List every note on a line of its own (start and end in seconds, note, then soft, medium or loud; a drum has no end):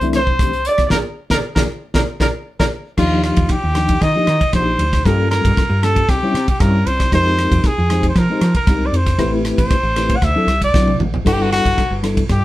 0.00 0.67 C2 medium
0.00 0.19 E3 medium
0.00 0.20 A3 medium
0.00 0.20 C4 medium
0.00 0.20 D4 medium
0.00 0.20 E4 loud
0.00 0.11 C5 medium
0.00 closed hi-hat soft
0.13 0.69 C5 medium
0.13 0.63 C5 medium
0.13 cross-stick medium
0.13 closed hi-hat soft
0.27 0.33 D4 soft
0.27 0.34 E4 soft
0.27 kick medium
0.39 0.50 E3 medium
0.39 0.50 A3 medium
0.39 0.50 C4 medium
0.39 0.50 D4 medium
0.39 0.50 G4 medium
0.39 kick loud
0.39 cross-stick medium
0.39 closed hi-hat medium
0.53 closed hi-hat soft
0.65 0.73 D4 soft
0.65 0.85 D5 medium
0.65 closed hi-hat medium
0.69 0.74 G4 soft
0.69 0.86 D5 medium
0.78 0.89 B1 medium
0.78 0.86 D4 soft
0.78 0.86 G4 soft
0.78 kick medium
0.78 cross-stick medium
0.78 closed hi-hat soft
0.85 0.90 D5 medium
0.85 0.92 D5 medium
0.90 1.01 A#1 medium
0.90 1.01 A#3 medium
0.90 1.00 D4 medium
0.90 1.01 F4 medium
0.90 1.02 G#4 medium
0.90 0.97 A#4 medium
0.90 1.01 A#4 medium
0.90 kick medium
0.90 snare medium
0.94 1.02 D5 medium
1.30 1.40 A#1 medium
1.30 1.39 A#3 medium
1.30 1.39 D4 medium
1.30 1.39 F4 medium
1.30 1.37 A#4 medium
1.30 1.41 A#4 medium
1.30 kick medium
1.30 snare medium
1.34 1.41 G#4 medium
1.34 1.41 D5 medium
1.55 1.66 A#1 medium
1.55 1.65 A#3 medium
1.55 1.64 D4 medium
1.55 1.65 F4 medium
1.55 1.65 G#4 loud
1.55 1.61 A#4 medium
1.55 1.65 A#4 medium
1.55 1.65 D5 medium
1.55 kick medium
1.55 snare medium
1.94 2.05 A#1 medium
1.94 2.03 A#3 medium
1.94 2.03 D4 medium
1.94 2.03 F4 medium
1.94 2.04 G#4 medium
1.94 2.01 A#4 medium
1.94 2.04 A#4 medium
1.94 2.04 D5 medium
1.94 kick medium
1.94 snare medium
2.20 2.30 A#1 medium
2.20 2.30 A#3 medium
2.20 2.30 D4 medium
2.20 2.30 F4 medium
2.20 2.29 G#4 medium
2.20 2.27 A#4 medium
2.20 2.30 A#4 medium
2.20 2.29 D5 medium
2.20 kick medium
2.20 snare medium
2.59 2.69 A#1 medium
2.59 2.68 A#3 medium
2.59 2.68 D4 medium
2.59 2.68 F4 medium
2.59 2.68 G#4 medium
2.59 2.66 A#4 medium
2.59 2.68 A#4 medium
2.59 2.68 D5 medium
2.59 kick medium
2.59 snare medium
2.97 3.32 D#2 medium
2.97 3.54 F3 medium
2.97 3.54 A#3 medium
2.97 3.54 D4 medium
2.97 3.54 D#4 medium
2.97 3.23 F4 medium
2.97 3.55 G4 medium
2.97 kick medium
2.97 cross-stick medium
2.97 crash medium
3.24 3.53 F4 medium
3.24 cross-stick medium
3.24 ride medium
3.36 3.48 D#2 medium
3.36 kick medium
3.36 ride medium
3.49 4.04 G4 medium
3.49 kick medium
3.49 cross-stick medium
3.49 ride medium
3.64 3.96 D#2 medium
3.75 3.95 F3 medium
3.75 3.95 A#3 medium
3.75 3.95 D4 medium
3.75 3.96 D#4 medium
3.75 3.96 G4 medium
3.75 cross-stick medium
3.75 ride medium
3.89 kick medium
3.89 ride medium
4.01 4.13 D#3 medium
4.01 4.09 D#4 soft
4.01 4.09 F4 soft
4.01 4.54 D#5 loud
4.01 kick medium
4.01 cross-stick medium
4.01 ride medium
4.15 4.24 F3 medium
4.15 4.25 A#3 medium
4.15 4.25 D4 medium
4.15 4.25 D#4 medium
4.15 4.25 G4 loud
4.27 4.39 D#3 medium
4.27 4.35 D#4 soft
4.27 cross-stick medium
4.27 ride soft
4.41 muted fretless electric bass stroke soft
4.41 kick medium
4.41 ride medium
4.53 4.76 A#1 loud
4.53 4.81 F3 medium
4.53 4.82 A#3 medium
4.53 4.82 D4 medium
4.53 4.82 D#4 medium
4.53 4.82 G4 medium
4.53 5.07 C5 medium
4.53 kick loud
4.53 cross-stick medium
4.53 ride medium
4.79 5.01 D2 medium
4.79 ride medium
4.93 4.99 D#4 soft
4.93 5.00 G4 soft
4.93 kick medium
4.93 cross-stick medium
4.93 ride medium
5.05 5.39 G2 loud
5.05 5.62 G3 medium
5.05 5.62 A#3 medium
5.05 5.62 C#4 medium
5.05 5.62 F4 medium
5.05 5.62 A4 loud
5.05 5.30 A#4 loud
5.05 kick medium
5.05 cross-stick medium
5.05 ride medium
5.31 5.85 A#4 medium
5.31 cross-stick medium
5.31 ride soft
5.45 5.55 G2 medium
5.45 kick medium
5.45 ride medium
5.57 kick loud
5.57 cross-stick medium
5.57 ride medium
5.70 6.03 G2 medium
5.83 6.02 G3 medium
5.83 6.02 A#3 medium
5.83 6.02 C#4 medium
5.83 6.03 F4 medium
5.83 6.03 G4 medium
5.83 6.11 A4 medium
5.83 cross-stick medium
5.83 ride medium
5.96 kick medium
5.96 ride medium
6.08 6.20 C2 medium
6.08 6.16 E4 soft
6.08 6.49 G4 medium
6.08 6.17 A#4 soft
6.08 kick medium
6.08 cross-stick medium
6.08 ride medium
6.23 6.32 G3 loud
6.23 6.32 C4 medium
6.23 6.32 C#4 medium
6.23 6.32 E4 medium
6.23 6.32 C#5 loud
6.34 6.46 C3 medium
6.34 6.42 E4 soft
6.34 6.43 G4 soft
6.34 cross-stick medium
6.34 ride medium
6.48 6.62 G4 medium
6.48 muted fretless electric bass stroke soft
6.48 kick medium
6.48 ride medium
6.60 6.83 G2 medium
6.60 6.89 G3 medium
6.60 6.89 C4 medium
6.60 6.89 C#4 medium
6.60 6.89 E4 medium
6.60 6.88 A#4 medium
6.60 6.90 C#5 medium
6.60 kick loud
6.60 cross-stick medium
6.60 ride medium
6.86 7.09 C2 medium
6.86 7.13 C5 medium
6.86 ride medium
7.00 7.07 E4 soft
7.00 7.07 A#4 soft
7.00 kick medium
7.00 cross-stick medium
7.00 ride medium
7.12 7.46 F2 medium
7.12 7.69 G#3 medium
7.12 7.69 C4 medium
7.12 7.69 D#4 medium
7.12 7.69 G4 medium
7.12 7.69 A#4 loud
7.12 7.68 C5 loud
7.12 kick medium
7.12 cross-stick medium
7.12 ride medium
7.39 cross-stick medium
7.39 ride medium
7.52 7.62 F2 medium
7.52 kick medium
7.52 ride medium
7.64 8.09 G#4 medium
7.64 kick loud
7.64 cross-stick medium
7.64 ride medium
7.78 8.11 F2 medium
7.90 8.09 G#3 medium
7.90 8.09 C4 medium
7.90 8.09 D#4 medium
7.90 8.10 G4 medium
7.90 8.10 C5 medium
7.90 cross-stick medium
7.90 ride medium
8.03 kick medium
8.03 ride medium
8.09 8.20 C5 medium
8.15 8.27 F3 medium
8.15 8.55 A#4 medium
8.15 8.24 A#4 soft
8.15 kick medium
8.15 cross-stick medium
8.15 ride soft
8.30 8.39 G#3 loud
8.30 8.39 C4 medium
8.30 8.39 D#4 medium
8.30 8.39 G4 medium
8.30 8.40 C5 loud
8.41 8.53 F3 medium
8.41 cross-stick medium
8.41 ride medium
8.55 8.88 A#4 medium
8.55 muted fretless electric bass stroke soft
8.55 kick medium
8.55 ride medium
8.67 8.89 C2 medium
8.67 8.96 G#3 medium
8.67 8.96 C4 medium
8.67 8.96 D#4 medium
8.67 8.96 G4 medium
8.67 8.97 A#4 medium
8.67 kick loud
8.67 cross-stick medium
8.67 ride medium
8.86 8.98 D5 medium
8.92 9.15 F2 medium
8.92 ride medium
8.96 9.33 C5 medium
9.06 9.13 G4 soft
9.06 9.14 A#4 soft
9.06 kick medium
9.06 cross-stick medium
9.06 ride medium
9.18 9.53 A1 medium
9.18 9.74 A3 medium
9.18 9.75 C4 medium
9.18 9.75 E4 medium
9.18 9.75 G4 medium
9.18 9.75 B4 loud
9.18 kick medium
9.18 cross-stick medium
9.18 ride medium
9.45 cross-stick medium
9.45 ride medium
9.58 9.69 A1 medium
9.58 10.18 C5 medium
9.58 kick medium
9.58 ride medium
9.71 kick loud
9.71 cross-stick medium
9.71 ride medium
9.83 10.16 A1 medium
9.96 10.15 A3 medium
9.96 10.16 C4 medium
9.96 10.16 E4 medium
9.96 10.16 G4 medium
9.96 10.16 B4 medium
9.96 cross-stick medium
9.96 ride medium
10.10 kick medium
10.10 ride medium
10.16 10.25 F#5 medium
10.22 10.34 D2 medium
10.22 10.29 E4 soft
10.22 10.30 A4 soft
10.22 10.63 E5 loud
10.22 kick medium
10.22 cross-stick medium
10.22 ride medium
10.35 10.45 F#3 medium
10.35 10.45 C4 medium
10.35 10.45 D4 medium
10.35 10.45 E4 medium
10.35 10.46 A4 loud
10.47 10.71 C2 medium
10.47 cross-stick medium
10.47 ride medium
10.62 10.99 D5 medium
10.62 kick medium
10.62 ride medium
10.74 10.97 B1 medium
10.74 11.02 F#3 medium
10.74 11.02 C4 medium
10.74 11.02 D4 medium
10.74 11.03 E4 medium
10.74 11.03 F#4 medium
10.74 kick loud
10.74 snare medium
10.88 high tom medium
10.99 11.23 A1 medium
10.99 mid tom medium
11.13 11.19 E4 soft
11.13 11.20 C5 soft
11.13 floor tom medium
11.25 11.59 G1 medium
11.25 11.81 G3 medium
11.25 11.81 B3 medium
11.25 11.81 D4 medium
11.25 11.82 E4 medium
11.25 11.34 F#4 loud
11.25 11.82 A4 loud
11.25 kick medium
11.25 cross-stick medium
11.25 ride medium
11.25 crash medium
11.33 11.43 G4 medium
11.42 11.52 F#4 loud
11.52 12.00 F#4 loud
11.52 cross-stick medium
11.52 ride medium
11.65 11.76 G1 medium
11.65 kick medium
11.65 ride medium
11.78 kick medium
11.78 cross-stick medium
11.78 ride soft
11.90 12.23 G1 medium
12.03 12.22 G3 medium
12.03 12.22 B3 medium
12.03 12.22 D4 medium
12.03 12.22 E4 medium
12.03 12.23 A4 medium
12.03 cross-stick medium
12.03 ride medium
12.17 kick medium
12.17 ride medium
12.29 12.41 G2 medium
12.29 12.45 G4 medium
12.29 12.37 A4 soft
12.29 kick medium
12.29 cross-stick medium
12.29 ride medium